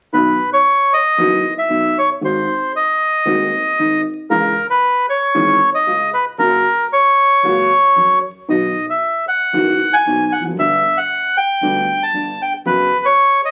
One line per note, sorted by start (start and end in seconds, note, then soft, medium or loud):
0.13 0.35 B1 medium
0.13 0.35 B2 medium
0.13 0.35 D#3 soft
0.13 0.35 F#3 soft
0.13 0.35 B3 soft
0.13 0.35 F#4 soft
0.13 0.50 B4 medium
0.53 0.93 C#5 medium
0.93 1.54 D#5 medium
1.17 1.40 F#1 medium
1.17 1.40 F#2 medium
1.17 1.40 D#3 soft
1.17 1.40 F#3 soft
1.17 1.40 B3 soft
1.17 1.40 F#4 medium
1.58 1.98 E5 medium
1.69 1.92 B1 soft
1.69 1.92 B2 soft
1.98 2.10 C#5 medium
2.21 2.44 G#1 medium
2.21 2.44 G#2 medium
2.21 2.44 D#3 soft
2.21 2.44 G#3 soft
2.21 2.44 C4 soft
2.21 2.44 F#4 soft
2.21 2.72 C5 medium
2.76 4.01 D#5 medium
3.25 3.48 D#1 medium
3.25 3.48 D#2 medium
3.25 3.49 D#2 medium
3.25 3.48 D#3 medium
3.25 3.48 G#3 soft
3.25 3.48 C4 soft
3.25 3.48 F#4 medium
3.79 4.01 G#1 soft
3.79 4.01 G#2 soft
4.30 4.52 C#2 medium
4.30 4.53 C#2 medium
4.30 4.52 C#3 medium
4.30 4.52 E3 soft
4.30 4.52 G#3 soft
4.30 4.52 C#4 soft
4.30 4.52 G#4 medium
4.30 4.67 A#4 medium
4.70 5.06 B4 medium
5.09 5.70 C#5 medium
5.35 5.56 G#1 medium
5.35 5.57 G#1 medium
5.35 5.56 G#2 medium
5.35 5.56 E3 medium
5.35 5.57 G#3 soft
5.35 5.56 C#4 soft
5.35 5.57 G#4 medium
5.75 6.10 D#5 medium
5.87 6.08 C#2 soft
5.87 6.09 C#2 soft
5.87 6.08 C#3 soft
6.14 6.25 B4 medium
6.38 6.60 F#1 medium
6.38 6.61 F#2 medium
6.38 6.60 C#3 soft
6.38 6.61 F#3 medium
6.38 6.61 A#3 soft
6.38 6.61 F#4 medium
6.38 6.87 A#4 medium
6.93 8.19 C#5 medium
7.43 7.65 C#2 medium
7.43 7.66 C#2 medium
7.43 7.66 C#3 medium
7.43 7.66 F#3 soft
7.43 7.66 A#3 soft
7.43 7.66 F#4 medium
7.96 8.18 F#1 medium
7.96 8.18 F#2 soft
7.96 8.18 F#3 soft
8.48 8.70 B1 medium
8.48 8.71 B1 medium
8.48 8.70 B2 medium
8.48 8.70 D#3 soft
8.48 8.70 F#3 soft
8.48 8.70 B3 soft
8.48 8.70 F#4 medium
8.48 8.86 D#5 medium
8.90 9.25 E5 medium
9.28 9.95 F#5 medium
9.53 9.75 F#1 medium
9.53 9.75 F#2 medium
9.53 9.75 D#3 medium
9.53 9.75 F#3 soft
9.53 9.75 B3 soft
9.53 9.75 F#4 medium
9.93 10.33 G#5 medium
10.06 10.27 B1 soft
10.06 10.28 B1 soft
10.06 10.28 B2 soft
10.32 10.44 F#5 medium
10.38 10.44 E1 soft
10.38 10.45 E2 soft
10.45 10.50 F1 soft
10.45 10.52 F2 soft
10.51 10.56 F#1 soft
10.51 10.58 F#2 soft
10.57 10.79 G1 medium
10.57 10.80 G1 medium
10.57 10.80 G2 medium
10.57 10.80 D3 soft
10.57 10.80 G3 soft
10.57 10.80 B3 soft
10.57 10.80 G4 soft
10.57 10.98 E5 medium
10.97 11.37 F#5 medium
11.37 12.03 G5 medium
11.61 11.83 D2 medium
11.61 11.84 D2 medium
11.61 11.84 D3 medium
11.61 11.84 G3 medium
11.61 11.84 B3 medium
11.61 11.84 G4 medium
12.03 12.42 A5 medium
12.13 12.35 G1 medium
12.13 12.35 G1 soft
12.13 12.35 G2 soft
12.42 12.53 G5 medium
12.65 12.87 F#1 medium
12.65 12.87 F#2 medium
12.65 12.87 C#3 soft
12.65 12.87 F#3 medium
12.65 12.87 B3 medium
12.65 12.88 F#4 soft
12.65 13.06 B4 medium
13.05 13.41 C#5 medium
13.45 13.51 D#5 medium